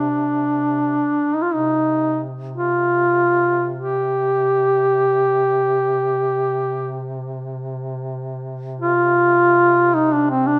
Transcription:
0.00 1.33 C3 soft
0.00 1.36 D4 medium
1.34 1.43 D#4 medium
1.42 1.55 F4 medium
1.50 10.59 C3 soft
1.50 2.22 D#4 medium
2.56 3.73 F4 medium
3.78 7.20 G4 medium
8.81 9.96 F4 medium
9.94 10.15 D#4 medium
10.13 10.30 D4 medium
10.30 10.48 C4 medium
10.46 10.59 D4 medium

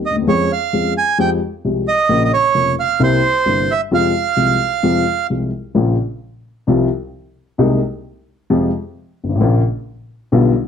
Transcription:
0.06 0.16 D#5 medium
0.11 0.17 D2 soft
0.16 0.22 D#2 medium
0.21 0.28 E2 medium
0.27 0.47 F2 medium
0.27 0.47 F3 medium
0.27 0.47 G#3 medium
0.27 0.47 C#4 soft
0.27 0.47 G#4 medium
0.27 0.52 C#5 medium
0.52 0.94 F5 medium
0.73 0.93 F2 soft
0.73 0.92 F3 soft
0.73 0.92 G#3 soft
0.73 0.93 C#4 soft
0.73 0.92 G#4 soft
0.98 1.18 G#5 medium
1.18 1.38 F2 medium
1.18 1.38 F3 medium
1.18 1.38 G#3 medium
1.18 1.38 C4 soft
1.18 1.38 G4 medium
1.18 1.30 G5 medium
1.64 1.83 C2 soft
1.64 1.83 C3 soft
1.64 1.83 F3 soft
1.64 1.83 G#3 soft
1.64 1.84 C4 soft
1.64 1.84 G4 soft
1.88 2.23 D#5 medium
2.09 2.29 A#1 medium
2.09 2.29 A#2 medium
2.09 2.28 C#3 medium
2.09 2.28 F3 medium
2.09 2.29 A#3 medium
2.09 2.29 F4 medium
2.25 2.32 D#5 medium
2.33 2.75 C#5 medium
2.54 2.74 F1 soft
2.54 2.74 F2 soft
2.54 2.74 C#3 soft
2.54 2.74 F3 soft
2.54 2.74 A#3 soft
2.54 2.74 F4 soft
2.80 3.02 F5 medium
2.99 3.19 C2 medium
2.99 3.19 C3 medium
2.99 3.19 G3 medium
2.99 3.19 A#3 medium
2.99 3.20 E4 medium
2.99 3.72 C5 medium
3.46 3.65 G1 soft
3.46 3.65 G2 soft
3.46 3.65 C3 soft
3.46 3.65 G3 soft
3.46 3.65 A#3 soft
3.46 3.66 E4 soft
3.71 3.81 E5 medium
3.91 4.11 F2 medium
3.91 4.11 C3 medium
3.91 4.11 F3 medium
3.91 4.11 G#3 medium
3.91 4.11 F4 medium
3.91 5.27 F5 medium
4.36 4.56 C2 soft
4.36 4.56 C3 soft
4.36 4.56 F3 soft
4.36 4.56 G#3 soft
4.36 4.57 F4 soft
4.83 5.03 F2 medium
4.83 5.03 C3 soft
4.83 5.03 F3 medium
4.83 5.03 G#3 soft
4.83 5.03 F4 medium
5.30 5.49 C2 soft
5.30 5.50 C3 soft
5.30 5.49 F3 soft
5.30 5.49 G#3 soft
5.30 5.50 F4 soft
5.75 5.95 A#1 medium
5.75 5.95 A#2 medium
5.75 5.94 C#3 medium
5.75 5.94 F3 medium
5.75 5.95 A#3 medium
5.75 5.95 F4 medium
6.67 6.87 C2 medium
6.67 6.87 C3 medium
6.67 6.87 F3 medium
6.67 6.87 G3 medium
6.67 6.87 F4 medium
7.58 7.78 C2 medium
7.58 7.78 C3 medium
7.58 7.78 G#3 medium
7.58 7.78 A#3 medium
7.58 7.78 D#4 medium
8.50 8.70 F2 medium
8.50 8.69 C3 medium
8.50 8.69 F3 medium
8.50 8.70 G#3 medium
8.50 8.70 F4 medium
9.24 9.30 G1 soft
9.29 9.35 G#1 medium
9.35 9.41 A1 medium
9.40 9.60 A#1 medium
9.40 9.60 A#2 medium
9.40 9.60 C#3 medium
9.40 9.60 F3 medium
9.40 9.60 A#3 medium
9.40 9.60 F4 medium
10.32 10.51 B1 medium
10.32 10.51 B2 medium
10.32 10.51 D3 medium
10.32 10.51 G3 medium
10.32 10.51 B3 medium
10.32 10.52 F4 medium

